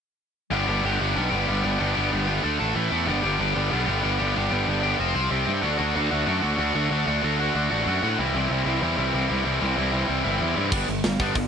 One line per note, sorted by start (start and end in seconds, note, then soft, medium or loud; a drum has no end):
0.51 0.65 G1 medium
0.51 0.68 G2 loud
0.51 0.68 D3 medium
0.51 0.67 G3 medium
0.51 0.67 B3 loud
0.51 0.67 D4 loud
0.51 0.65 G4 loud
0.67 0.81 G1 medium
0.67 0.82 G2 medium
0.67 0.83 D3 medium
0.67 0.83 G3 medium
0.67 0.84 B3 medium
0.67 0.84 D4 medium
0.67 0.85 G4 medium
0.83 0.97 G1 medium
0.83 1.01 G2 medium
0.83 1.01 D3 medium
0.83 1.00 G3 medium
0.83 1.00 B3 medium
0.83 0.99 D4 medium
0.83 0.98 G4 medium
0.99 1.13 G1 medium
0.99 1.13 G2 medium
0.99 1.15 D3 medium
0.99 1.15 G3 medium
0.99 1.15 B3 medium
0.99 1.16 D4 medium
0.99 1.16 G4 medium
1.15 1.30 B1 medium
1.15 1.32 G2 medium
1.15 1.31 D3 medium
1.15 1.31 G3 medium
1.15 1.30 B3 medium
1.15 1.29 D4 medium
1.15 1.29 G4 medium
1.30 1.45 G1 medium
1.30 1.45 G2 medium
1.30 1.46 D3 medium
1.30 1.46 G3 medium
1.30 1.47 B3 medium
1.30 1.47 D4 medium
1.30 1.48 G4 medium
1.46 1.61 G1 medium
1.46 1.64 G2 medium
1.46 1.64 D3 medium
1.46 1.63 G3 medium
1.46 1.63 B3 medium
1.46 1.62 D4 medium
1.46 1.61 G4 medium
1.62 1.77 G1 medium
1.62 1.77 G2 medium
1.62 1.77 D3 medium
1.62 1.78 G3 medium
1.62 1.78 B3 medium
1.62 1.79 D4 medium
1.62 1.79 G4 medium
1.78 1.93 G1 medium
1.78 1.96 G2 medium
1.78 1.96 D3 loud
1.78 1.95 G3 medium
1.78 1.95 B3 medium
1.78 1.94 D4 loud
1.78 1.93 G4 loud
1.94 2.10 G1 medium
1.94 2.10 G2 medium
1.94 2.10 D3 medium
1.94 2.11 G3 medium
1.94 2.11 B3 medium
1.94 2.12 D4 medium
1.94 2.12 G4 medium
2.11 2.39 G1 medium
2.11 2.29 G2 medium
2.11 2.28 D3 medium
2.11 2.28 G3 medium
2.11 2.27 B3 medium
2.11 2.26 D4 medium
2.11 2.25 G4 medium
2.27 2.44 G2 medium
2.27 2.41 D3 medium
2.27 2.43 G3 medium
2.27 2.42 B3 medium
2.27 2.42 D4 medium
2.27 2.42 G4 medium
2.42 2.57 D2 medium
2.42 2.59 D3 medium
2.42 2.59 A3 medium
2.42 2.58 D4 medium
2.42 2.57 A4 medium
2.59 2.73 A1 medium
2.59 2.75 D3 medium
2.59 2.74 A3 medium
2.59 2.75 D4 medium
2.59 2.74 A4 medium
2.74 2.89 A1 medium
2.74 2.91 A2 medium
2.74 2.90 E3 medium
2.74 2.89 A3 medium
2.74 2.89 E4 medium
2.90 3.09 E2 medium
2.90 3.06 A2 medium
2.90 3.07 E3 medium
2.90 3.06 A3 medium
2.90 3.06 E4 medium
3.06 3.21 G1 medium
3.06 3.24 G2 loud
3.06 3.24 D3 medium
3.06 3.23 G3 medium
3.06 3.23 B3 loud
3.06 3.22 D4 loud
3.06 3.21 G4 loud
3.22 3.37 G1 medium
3.22 3.37 G2 medium
3.22 3.38 D3 medium
3.22 3.39 G3 medium
3.22 3.39 B3 medium
3.22 3.40 D4 medium
3.22 3.40 G4 loud
3.39 3.53 G1 medium
3.39 3.56 G2 medium
3.39 3.56 D3 medium
3.39 3.55 G3 medium
3.39 3.55 B3 loud
3.39 3.54 D4 medium
3.39 3.53 G4 medium
3.55 3.69 G1 medium
3.55 3.69 G2 medium
3.55 3.70 D3 medium
3.55 3.71 G3 medium
3.55 3.71 B3 medium
3.55 3.72 D4 medium
3.55 3.72 G4 medium
3.71 3.86 B1 medium
3.71 3.88 G2 medium
3.71 3.88 D3 medium
3.71 3.87 G3 medium
3.71 3.86 B3 medium
3.71 3.86 D4 medium
3.71 3.85 G4 medium
3.86 4.01 G1 medium
3.86 4.01 G2 medium
3.86 4.02 D3 medium
3.86 4.02 G3 medium
3.86 4.03 B3 medium
3.86 4.03 D4 medium
3.86 4.04 G4 medium
4.02 4.17 G1 medium
4.02 4.20 G2 medium
4.02 4.20 D3 medium
4.02 4.19 G3 medium
4.02 4.19 B3 medium
4.02 4.18 D4 medium
4.02 4.17 G4 medium
4.18 4.33 G1 medium
4.18 4.33 G2 medium
4.18 4.34 D3 medium
4.18 4.34 G3 medium
4.18 4.35 B3 medium
4.18 4.36 D4 medium
4.18 4.36 G4 medium
4.34 4.49 G1 medium
4.34 4.52 G2 medium
4.34 4.51 D3 loud
4.34 4.51 G3 medium
4.34 4.50 B3 loud
4.34 4.50 D4 loud
4.34 4.49 G4 loud
4.50 4.65 G1 medium
4.50 4.65 G2 medium
4.50 4.66 D3 medium
4.50 4.67 G3 medium
4.50 4.67 B3 medium
4.50 4.68 D4 medium
4.50 4.68 G4 medium
4.66 4.94 G1 medium
4.66 4.85 G2 medium
4.66 4.84 D3 medium
4.66 4.84 G3 medium
4.66 4.83 B3 medium
4.66 4.82 D4 medium
4.66 4.81 G4 medium
4.83 5.00 G2 medium
4.83 4.98 D3 medium
4.83 4.99 G3 medium
4.83 4.99 B3 medium
4.83 4.99 D4 medium
4.83 4.98 G4 medium
4.99 5.13 F1 medium
4.99 5.15 F3 medium
4.99 5.15 C4 medium
4.99 5.14 F4 medium
4.99 5.13 C5 medium
5.15 5.28 C2 medium
5.15 5.31 F3 medium
5.15 5.30 C4 medium
5.15 5.30 F4 medium
5.15 5.30 C5 medium
5.30 5.44 C2 medium
5.30 5.47 C3 medium
5.30 5.46 G3 medium
5.30 5.46 C4 medium
5.30 5.45 G4 medium
5.46 5.61 G2 medium
5.46 5.63 C3 medium
5.46 5.62 G3 medium
5.46 5.62 C4 medium
5.46 5.62 G4 medium
5.62 5.76 D2 medium
5.62 5.79 D3 medium
5.62 5.79 A3 medium
5.62 5.78 D4 loud
5.62 5.77 F#4 loud
5.78 5.92 D2 medium
5.78 5.94 D3 medium
5.78 5.95 A3 medium
5.78 5.95 D4 medium
5.78 5.96 F#4 loud
5.94 6.09 D2 medium
5.94 6.12 D3 medium
5.94 6.11 A3 medium
5.94 6.10 D4 medium
5.94 6.10 F#4 medium
6.10 6.25 D2 medium
6.10 6.25 D3 medium
6.10 6.26 A3 medium
6.10 6.26 D4 medium
6.10 6.27 F#4 medium
6.26 6.40 F#2 medium
6.26 6.43 D3 medium
6.26 6.42 A3 medium
6.26 6.42 D4 medium
6.26 6.40 F#4 medium
6.42 6.56 D2 medium
6.42 6.57 D3 medium
6.42 6.58 A3 medium
6.42 6.59 D4 medium
6.42 6.59 F#4 medium
6.58 6.72 D2 medium
6.58 6.76 D3 medium
6.58 6.75 A3 medium
6.58 6.75 D4 medium
6.58 6.74 F#4 medium
6.75 6.88 D2 medium
6.75 6.89 D3 medium
6.75 6.90 A3 medium
6.75 6.91 D4 medium
6.75 6.91 F#4 medium
6.90 7.04 D2 medium
6.90 7.08 D3 medium
6.90 7.07 A3 medium
6.90 7.07 D4 loud
6.90 7.06 F#4 loud
7.07 7.20 D2 medium
7.07 7.21 D3 medium
7.07 7.23 A3 medium
7.07 7.23 D4 medium
7.07 7.24 F#4 medium
7.23 7.49 D2 medium
7.23 7.40 D3 medium
7.23 7.39 A3 medium
7.23 7.39 D4 medium
7.23 7.38 F#4 medium
7.39 7.53 D3 medium
7.39 7.54 A3 medium
7.39 7.55 D4 medium
7.39 7.55 F#4 medium
7.54 7.68 D2 medium
7.54 7.71 D3 medium
7.54 7.71 A3 medium
7.54 7.70 D4 medium
7.54 7.70 F#4 medium
7.71 7.84 A1 medium
7.71 7.86 D3 medium
7.71 7.87 A3 medium
7.71 7.87 D4 medium
7.71 7.88 F#4 medium
7.86 7.99 F#2 medium
7.86 8.04 D3 medium
7.86 8.03 A3 medium
7.86 8.02 D4 medium
7.86 8.02 F#4 medium
8.03 8.16 A2 medium
8.03 8.18 D3 medium
8.03 8.18 A3 medium
8.03 8.18 D4 medium
8.03 8.17 F#4 medium
8.18 8.32 C2 medium
8.18 8.36 C3 medium
8.18 8.36 E3 loud
8.18 8.35 G3 loud
8.18 8.35 C4 loud
8.18 8.34 E4 loud
8.34 8.47 C2 medium
8.34 8.49 C3 medium
8.34 8.50 E3 medium
8.34 8.51 G3 medium
8.34 8.51 C4 medium
8.34 8.52 E4 medium
8.50 8.63 C2 medium
8.50 8.68 C3 medium
8.50 8.67 E3 medium
8.50 8.67 G3 medium
8.50 8.66 C4 medium
8.50 8.65 E4 medium
8.66 8.79 C2 medium
8.66 8.80 C3 medium
8.66 8.80 E3 medium
8.66 8.82 G3 medium
8.66 8.82 C4 medium
8.66 8.82 E4 medium
8.81 8.95 E2 medium
8.81 8.98 C3 medium
8.81 8.98 E3 medium
8.81 8.98 G3 medium
8.81 8.96 C4 medium
8.81 8.96 E4 medium
8.97 9.11 C2 medium
8.97 9.12 C3 medium
8.97 9.12 E3 medium
8.97 9.14 G3 medium
8.97 9.14 C4 medium
8.97 9.14 E4 medium
9.13 9.27 C2 medium
9.13 9.29 C3 medium
9.13 9.29 E3 medium
9.13 9.29 G3 medium
9.13 9.28 C4 medium
9.13 9.27 E4 medium
9.28 9.43 C2 medium
9.28 9.43 C3 medium
9.28 9.43 E3 medium
9.28 9.44 G3 medium
9.28 9.45 C4 medium
9.28 9.45 E4 medium
9.44 9.58 C2 medium
9.44 9.62 C3 loud
9.44 9.61 E3 medium
9.44 9.60 G3 loud
9.44 9.60 C4 loud
9.44 9.59 E4 loud
9.60 9.75 C2 medium
9.60 9.75 C3 medium
9.60 9.76 E3 medium
9.60 9.76 G3 medium
9.60 9.77 C4 medium
9.60 9.77 E4 loud
9.76 10.03 C2 medium
9.76 9.93 C3 medium
9.76 9.92 E3 medium
9.76 9.92 G3 medium
9.76 9.91 C4 medium
9.76 9.91 E4 loud
9.92 10.06 C3 medium
9.92 10.07 E3 medium
9.92 10.07 G3 medium
9.92 10.08 C4 medium
9.92 10.09 E4 medium
10.07 10.22 C2 medium
10.07 10.25 C3 medium
10.07 10.24 E3 medium
10.07 10.24 G3 medium
10.07 10.23 C4 medium
10.07 10.22 E4 medium
10.23 10.38 G1 medium
10.23 10.38 C3 medium
10.23 10.39 E3 medium
10.23 10.40 G3 medium
10.23 10.40 C4 loud
10.23 10.41 E4 loud
10.39 10.54 E2 medium
10.39 10.57 C3 medium
10.39 10.56 E3 medium
10.39 10.56 G3 medium
10.39 10.55 C4 medium
10.39 10.54 E4 medium
10.56 10.70 G2 medium
10.56 10.72 C3 medium
10.56 10.71 E3 medium
10.56 10.70 G3 medium
10.56 10.71 C4 medium
10.56 10.71 E4 medium
10.72 10.83 G1 medium
10.72 10.86 G3 medium
10.72 10.87 B3 medium
10.72 10.87 D4 loud
10.72 kick loud
10.72 crash loud
10.87 11.00 G1 medium
10.87 11.02 G3 medium
10.87 11.02 B3 medium
10.87 open hi-hat medium
11.04 11.16 G1 medium
11.04 11.18 G3 medium
11.04 11.18 B3 medium
11.04 snare loud
11.04 open hi-hat medium
11.20 11.31 G1 medium
11.20 11.35 G3 medium
11.20 11.35 B3 medium
11.20 11.36 D4 medium
11.20 kick medium
11.20 open hi-hat medium
11.35 11.48 G1 medium
11.35 11.48 G3 medium
11.35 11.48 B3 medium
11.35 kick medium
11.35 open hi-hat medium